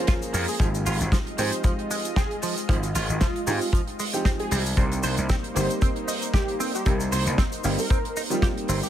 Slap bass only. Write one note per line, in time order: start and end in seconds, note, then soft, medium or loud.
0.34 0.45 F2 medium
0.60 0.81 G#1 loud
0.86 0.97 G#1 medium
1.01 1.10 G#1 medium
1.38 1.50 G#2 medium
2.69 2.90 G#1 loud
2.95 3.06 G#1 medium
3.09 3.19 G#1 medium
3.47 3.58 G#2 medium
4.51 4.73 C2 medium
4.77 4.98 C2 loud
5.03 5.15 C2 medium
5.18 5.27 C2 medium
5.56 5.67 G1 medium
6.86 7.07 C2 medium
7.12 7.23 C2 medium
7.26 7.36 C2 medium
7.64 7.76 G1 medium
8.69 8.80 G1 medium